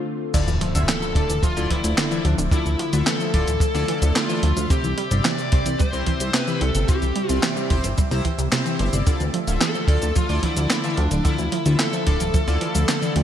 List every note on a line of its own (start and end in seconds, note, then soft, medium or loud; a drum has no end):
0.00 0.32 D3 medium
0.00 0.32 A3 medium
0.00 0.30 C4 medium
0.00 0.32 F4 medium
0.34 0.40 D3 loud
0.34 0.48 D3 medium
0.34 4.66 D3 medium
0.34 4.67 F3 medium
0.34 4.66 A3 medium
0.34 0.48 E4 medium
0.34 0.48 F4 medium
0.34 0.49 A4 medium
0.34 0.49 D5 medium
0.34 13.23 E5 medium
0.34 kick loud
0.34 closed hi-hat medium
0.34 crash loud
0.34 impact medium
0.34 shaker soft
0.48 0.58 D2 medium
0.48 0.54 E3 medium
0.48 closed hi-hat soft
0.48 shaker soft
0.61 0.67 F3 loud
0.61 closed hi-hat medium
0.75 0.85 D1 medium
0.75 0.88 D3 medium
0.75 1.13 D3 medium
0.75 1.13 E4 medium
0.75 1.13 F4 medium
0.75 1.13 A4 medium
0.75 1.13 E5 medium
0.75 closed hi-hat medium
0.75 shaker medium
0.89 1.02 E3 medium
0.89 1.45 A4 medium
0.89 snare loud
0.89 clap loud
0.89 closed hi-hat medium
0.89 shaker medium
1.02 1.15 F3 medium
1.02 closed hi-hat soft
1.02 shaker soft
1.15 1.26 D2 medium
1.15 1.26 D3 medium
1.15 1.30 D3 medium
1.15 1.30 E4 medium
1.15 1.30 F4 medium
1.15 1.30 A4 medium
1.15 1.30 D5 loud
1.15 kick loud
1.15 closed hi-hat loud
1.29 1.40 D2 medium
1.29 1.36 E3 medium
1.29 closed hi-hat medium
1.29 shaker medium
1.43 1.49 F3 loud
1.43 1.70 F4 medium
1.43 kick loud
1.43 closed hi-hat medium
1.43 shaker soft
1.57 1.67 D2 medium
1.57 1.63 D3 medium
1.57 1.68 D3 loud
1.57 1.68 E4 loud
1.57 1.68 F4 medium
1.57 1.68 A4 medium
1.57 1.68 D5 loud
1.57 closed hi-hat soft
1.57 shaker soft
1.70 2.08 D3 medium
1.70 1.76 E3 loud
1.70 2.08 F3 medium
1.70 2.08 E4 medium
1.70 2.25 E4 loud
1.70 2.08 A4 medium
1.70 2.08 D5 medium
1.70 kick medium
1.70 closed hi-hat medium
1.84 1.94 D2 medium
1.84 1.97 F3 medium
1.84 closed hi-hat medium
1.84 shaker medium
1.98 2.08 D3 loud
1.98 snare loud
1.98 clap medium
1.98 closed hi-hat medium
1.98 shaker medium
2.11 2.26 D3 medium
2.11 2.24 E3 medium
2.11 2.26 E4 medium
2.11 2.26 F4 medium
2.11 2.26 A4 medium
2.11 2.26 D5 loud
2.11 closed hi-hat soft
2.11 shaker soft
2.25 2.35 D2 medium
2.25 2.35 F3 medium
2.25 2.32 D4 medium
2.25 closed hi-hat medium
2.38 2.49 D1 medium
2.38 2.49 D3 loud
2.38 closed hi-hat medium
2.38 shaker medium
2.51 2.58 D3 loud
2.51 2.67 D3 medium
2.51 2.67 E4 medium
2.51 3.03 E4 medium
2.51 2.67 F4 medium
2.51 2.67 A4 medium
2.51 2.67 D5 medium
2.51 kick loud
2.51 closed hi-hat medium
2.51 shaker soft
2.66 2.76 D2 medium
2.66 2.72 E3 medium
2.66 closed hi-hat soft
2.66 shaker soft
2.79 2.85 F3 loud
2.79 closed hi-hat medium
2.93 3.03 D2 medium
2.93 3.06 D3 medium
2.93 3.31 D3 medium
2.93 3.31 E4 medium
2.93 3.31 F4 medium
2.93 3.31 A4 medium
2.93 3.31 E5 medium
2.93 closed hi-hat medium
2.93 shaker medium
3.07 3.20 E3 medium
3.07 4.19 A4 loud
3.07 snare loud
3.07 clap loud
3.07 closed hi-hat medium
3.07 shaker soft
3.20 3.33 F3 medium
3.20 closed hi-hat soft
3.20 shaker soft
3.34 3.44 D1 medium
3.34 3.48 D3 medium
3.34 3.44 D3 medium
3.34 3.48 E4 medium
3.34 3.48 F4 medium
3.34 3.49 A4 medium
3.34 3.48 D5 loud
3.34 kick loud
3.34 closed hi-hat loud
3.47 3.58 D1 medium
3.47 3.54 E3 medium
3.47 closed hi-hat medium
3.47 shaker medium
3.60 3.67 F3 loud
3.60 kick loud
3.60 closed hi-hat medium
3.60 shaker soft
3.75 3.85 D2 medium
3.75 3.81 D3 medium
3.75 3.86 D3 loud
3.75 3.86 E4 medium
3.75 3.86 F4 medium
3.75 3.86 A4 medium
3.75 3.86 D5 loud
3.75 snare soft
3.75 closed hi-hat soft
3.75 shaker soft
3.88 4.26 D3 medium
3.88 3.95 E3 loud
3.88 4.26 E4 medium
3.88 4.26 F4 medium
3.88 4.26 A4 medium
3.88 4.26 D5 medium
3.88 closed hi-hat loud
4.02 4.12 D2 medium
4.02 4.15 F3 medium
4.02 closed hi-hat medium
4.02 shaker medium
4.16 4.26 D3 loud
4.16 4.72 F4 medium
4.16 snare loud
4.16 clap loud
4.16 closed hi-hat medium
4.16 shaker soft
4.29 4.44 D3 medium
4.29 4.42 E3 medium
4.29 4.44 E4 medium
4.29 4.44 F4 medium
4.29 4.44 A4 medium
4.29 4.44 D5 loud
4.29 closed hi-hat soft
4.29 shaker soft
4.43 4.53 D2 loud
4.43 4.53 F3 medium
4.43 closed hi-hat loud
4.57 4.67 D2 medium
4.57 4.67 D3 loud
4.57 closed hi-hat medium
4.57 shaker medium
4.70 9.03 C3 medium
4.70 4.76 C3 loud
4.70 4.85 C3 medium
4.70 9.03 C4 medium
4.70 4.85 C4 medium
4.70 4.85 E4 medium
4.70 9.03 G4 medium
4.70 4.85 G4 medium
4.70 5.27 G4 loud
4.70 4.85 C5 medium
4.70 kick loud
4.70 closed hi-hat medium
4.70 shaker soft
4.84 4.94 C2 medium
4.84 4.90 E3 medium
4.84 closed hi-hat soft
4.84 shaker soft
4.98 5.04 G3 loud
4.98 closed hi-hat medium
5.11 5.21 G1 medium
5.11 5.24 C3 medium
5.11 5.49 C3 medium
5.11 5.49 C4 medium
5.11 5.49 E4 medium
5.11 5.49 G4 medium
5.11 5.49 D5 medium
5.11 closed hi-hat medium
5.11 shaker medium
5.25 5.38 E3 medium
5.25 5.79 D5 loud
5.25 snare loud
5.25 clap medium
5.25 closed hi-hat medium
5.25 shaker soft
5.38 5.52 G3 medium
5.38 closed hi-hat soft
5.38 shaker soft
5.52 5.62 C2 medium
5.52 5.62 C3 medium
5.52 5.67 C3 medium
5.52 5.67 C4 medium
5.52 5.67 E4 medium
5.52 5.67 G4 medium
5.52 5.67 C5 loud
5.52 kick loud
5.52 closed hi-hat loud
5.66 5.76 C2 medium
5.66 5.72 E3 medium
5.66 closed hi-hat medium
5.66 shaker medium
5.79 5.86 G3 loud
5.79 6.34 C5 loud
5.79 kick loud
5.79 closed hi-hat medium
5.79 shaker soft
5.93 6.03 C2 medium
5.93 5.99 C3 medium
5.93 6.04 C3 loud
5.93 6.04 C4 medium
5.93 6.04 E4 medium
5.93 6.04 G4 medium
5.93 6.04 C5 loud
5.93 closed hi-hat soft
5.93 shaker soft
6.06 6.44 C3 medium
6.06 6.13 E3 loud
6.06 6.44 C4 medium
6.06 6.44 E4 medium
6.06 6.44 G4 medium
6.06 6.44 C5 medium
6.06 kick medium
6.06 closed hi-hat medium
6.20 6.30 C2 medium
6.20 6.33 G3 medium
6.20 closed hi-hat medium
6.20 shaker medium
6.34 6.44 C3 loud
6.34 6.60 B4 loud
6.34 snare loud
6.34 clap loud
6.34 closed hi-hat medium
6.34 shaker soft
6.47 6.62 C3 medium
6.47 6.61 E3 medium
6.47 6.62 C4 medium
6.47 6.62 E4 medium
6.47 6.62 G4 medium
6.47 6.62 C5 loud
6.47 closed hi-hat soft
6.47 shaker soft
6.61 6.71 C2 medium
6.61 6.71 G3 medium
6.61 6.89 A4 loud
6.61 closed hi-hat medium
6.75 6.85 G1 medium
6.75 6.85 C3 loud
6.75 closed hi-hat medium
6.75 shaker medium
6.88 6.95 C3 loud
6.88 7.03 C3 medium
6.88 7.03 C4 medium
6.88 7.03 E4 medium
6.88 7.03 G4 medium
6.88 7.39 G4 medium
6.88 7.03 C5 medium
6.88 kick loud
6.88 closed hi-hat medium
6.88 shaker soft
7.02 7.12 C2 medium
7.02 7.08 E3 medium
7.02 closed hi-hat soft
7.02 shaker soft
7.16 7.22 G3 loud
7.16 closed hi-hat medium
7.29 7.40 C2 medium
7.29 7.42 C3 medium
7.29 7.67 C3 medium
7.29 7.67 C4 medium
7.29 7.67 E4 medium
7.29 7.67 G4 medium
7.29 7.67 D5 medium
7.29 closed hi-hat medium
7.29 shaker medium
7.43 7.56 E3 medium
7.43 snare loud
7.43 clap medium
7.43 closed hi-hat medium
7.43 shaker soft
7.57 7.70 G3 medium
7.57 closed hi-hat soft
7.57 shaker soft
7.70 7.81 G1 medium
7.70 7.80 C3 medium
7.70 7.85 C3 medium
7.70 7.85 C4 medium
7.70 7.85 E4 medium
7.70 7.85 G4 medium
7.70 7.85 C5 loud
7.70 kick loud
7.70 closed hi-hat loud
7.84 7.94 G1 medium
7.84 7.90 E3 medium
7.84 closed hi-hat medium
7.84 shaker medium
7.98 8.04 G3 loud
7.98 kick loud
7.98 closed hi-hat medium
7.98 shaker soft
8.11 8.21 C2 medium
8.11 8.17 C3 medium
8.11 8.22 C3 loud
8.11 8.22 C4 medium
8.11 8.22 E4 medium
8.11 8.22 G4 medium
8.11 8.22 C5 loud
8.11 snare soft
8.11 closed hi-hat soft
8.11 shaker soft
8.25 8.31 E3 loud
8.25 kick medium
8.25 closed hi-hat medium
8.39 8.49 C2 medium
8.39 8.52 G3 medium
8.39 closed hi-hat medium
8.39 shaker medium
8.52 8.62 C3 loud
8.52 8.76 C3 medium
8.52 8.76 C4 medium
8.52 8.76 E4 medium
8.52 8.76 G4 medium
8.52 8.76 C5 loud
8.52 snare loud
8.52 clap medium
8.52 closed hi-hat medium
8.52 shaker soft
8.66 8.79 E3 medium
8.66 closed hi-hat soft
8.66 shaker soft
8.79 8.90 G1 loud
8.79 8.89 G3 medium
8.79 8.91 C4 medium
8.79 8.91 E4 medium
8.79 8.91 G4 medium
8.79 8.91 C5 loud
8.79 closed hi-hat medium
8.93 9.03 G1 medium
8.93 9.03 C3 loud
8.93 9.04 C4 medium
8.93 9.04 E4 medium
8.93 9.04 G4 medium
8.93 9.04 D5 medium
8.93 closed hi-hat medium
8.93 shaker medium
9.07 9.13 D3 loud
9.07 13.23 D3 medium
9.07 9.21 D3 medium
9.07 13.23 F3 medium
9.07 13.23 A3 medium
9.07 9.21 E4 medium
9.07 9.21 F4 medium
9.07 9.21 A4 medium
9.07 9.21 D5 medium
9.07 kick loud
9.07 closed hi-hat soft
9.07 shaker soft
9.20 9.30 D2 medium
9.20 9.26 E3 medium
9.20 closed hi-hat soft
9.20 shaker soft
9.34 9.40 F3 loud
9.34 closed hi-hat medium
9.47 9.58 D1 medium
9.47 9.61 D3 medium
9.47 9.85 D3 medium
9.47 9.85 E4 medium
9.47 9.85 F4 medium
9.47 9.85 A4 medium
9.47 9.85 E5 medium
9.47 closed hi-hat medium
9.47 shaker medium
9.61 9.74 E3 medium
9.61 10.12 A4 loud
9.61 snare loud
9.61 clap medium
9.61 closed hi-hat medium
9.61 shaker medium
9.75 9.88 F3 medium
9.75 closed hi-hat soft
9.75 shaker soft
9.88 9.98 D2 medium
9.88 9.99 D3 medium
9.88 10.03 D3 loud
9.88 10.03 E4 medium
9.88 10.03 F4 medium
9.88 10.03 A4 medium
9.88 10.03 D5 loud
9.88 kick loud
9.88 closed hi-hat medium
10.02 10.12 D2 medium
10.02 10.08 E3 medium
10.02 closed hi-hat soft
10.02 shaker medium
10.16 10.22 F3 loud
10.16 10.43 F4 loud
10.16 kick loud
10.16 closed hi-hat medium
10.16 shaker medium
10.29 10.40 D2 medium
10.29 10.35 D3 medium
10.29 10.40 D3 loud
10.29 10.40 E4 medium
10.29 10.40 F4 medium
10.29 10.40 A4 loud
10.29 10.40 D5 loud
10.29 closed hi-hat soft
10.29 shaker soft
10.43 10.81 D3 medium
10.43 10.49 E3 loud
10.43 10.81 F3 medium
10.43 10.81 E4 medium
10.43 10.97 E4 loud
10.43 10.81 A4 medium
10.43 10.81 D5 medium
10.43 kick medium
10.43 closed hi-hat medium
10.57 10.67 D2 medium
10.57 10.70 F3 medium
10.57 closed hi-hat medium
10.57 shaker medium
10.70 10.80 D3 loud
10.70 snare loud
10.70 clap medium
10.70 closed hi-hat medium
10.70 shaker medium
10.84 10.99 D3 medium
10.84 10.97 E3 medium
10.84 10.99 E4 medium
10.84 10.99 F4 medium
10.84 10.99 A4 medium
10.84 10.99 D5 loud
10.84 closed hi-hat soft
10.84 shaker soft
10.97 11.08 D2 loud
10.97 11.08 F3 medium
10.97 11.25 D4 medium
10.97 closed hi-hat medium
11.11 11.21 D1 medium
11.11 11.21 D3 loud
11.11 closed hi-hat medium
11.11 shaker medium
11.25 11.31 D3 loud
11.25 11.39 D3 medium
11.25 11.76 E4 loud
11.25 11.39 E4 medium
11.25 11.39 F4 medium
11.25 11.39 A4 medium
11.25 11.39 D5 medium
11.25 kick loud
11.25 closed hi-hat soft
11.25 shaker soft
11.38 11.49 D2 medium
11.38 11.45 E3 medium
11.38 closed hi-hat soft
11.38 shaker soft
11.52 11.58 F3 loud
11.52 closed hi-hat medium
11.66 11.76 D2 medium
11.66 11.79 D3 medium
11.66 12.04 D3 medium
11.66 12.04 E4 medium
11.66 12.04 F4 medium
11.66 12.04 A4 medium
11.66 12.04 E5 medium
11.66 closed hi-hat soft
11.66 shaker medium
11.79 11.92 E3 medium
11.79 13.12 A4 medium
11.79 snare loud
11.79 clap medium
11.79 closed hi-hat medium
11.79 shaker medium
11.93 12.06 F3 medium
11.93 closed hi-hat soft
11.93 shaker soft
12.07 12.17 D1 medium
12.07 12.17 D3 medium
12.07 12.21 D3 medium
12.07 12.21 E4 medium
12.07 12.21 F4 medium
12.07 12.21 A4 medium
12.07 12.21 D5 loud
12.07 kick loud
12.07 closed hi-hat medium
12.20 12.31 D1 medium
12.20 12.27 E3 medium
12.20 closed hi-hat soft
12.20 shaker medium
12.34 12.40 F3 loud
12.34 kick loud
12.34 closed hi-hat medium
12.34 shaker soft
12.48 12.58 D2 medium
12.48 12.59 D3 loud
12.48 12.54 D3 medium
12.48 12.59 E4 loud
12.48 12.59 F4 medium
12.48 12.59 A4 medium
12.48 12.59 D5 loud
12.48 snare soft
12.48 closed hi-hat soft
12.48 shaker soft
12.61 12.99 D3 medium
12.61 12.67 E3 loud
12.61 12.99 E4 medium
12.61 12.99 F4 medium
12.61 12.99 A4 medium
12.61 12.99 D5 medium
12.61 closed hi-hat medium
12.75 12.85 D2 medium
12.75 12.88 F3 medium
12.75 closed hi-hat medium
12.75 shaker medium
12.89 12.99 D3 loud
12.89 snare loud
12.89 clap medium
12.89 closed hi-hat medium
12.89 shaker medium
13.02 13.17 D3 medium
13.02 13.15 E3 medium
13.02 13.17 E4 medium
13.02 13.17 F4 medium
13.02 13.17 A4 medium
13.02 13.17 D5 loud
13.02 closed hi-hat soft
13.02 shaker soft
13.16 13.23 D2 loud
13.16 13.23 F3 medium
13.16 closed hi-hat medium